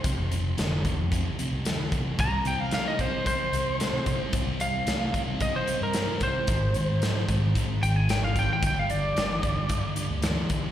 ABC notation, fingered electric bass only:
X:1
M:4/4
L:1/16
Q:1/4=112
K:Cm
V:1 name="Fingered electric bass" clef=bass
z F,,,3 F,,,3 F,,2 z2 C,,2 z3 | C,, C,, C,4 C,2 z2 C,,3 C,2 z | z C,,3 C,,3 C,2 z2 G,,2 z3 | A,,, A,,, A,,4 A,,2 z2 A,,,3 A,,,2 z |
G,,, G,,,3 G,,,3 G,,2 z2 D,,2 z3 |]